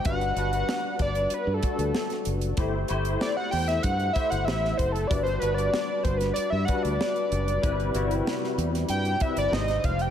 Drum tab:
HH |xxxx--xxx-xx-xxx|x-xx--oxxxxx--xx|xxxx--xxx-xx-xxx|xxxx--xxxxxx-xxx|
SD |----o-o-----oo--|----o--o----oo--|----o--o----o---|----oo-o----oo--|
BD |o-----o---o-----|o-------o-o---o-|o-----o---o-----|o---------o---o-|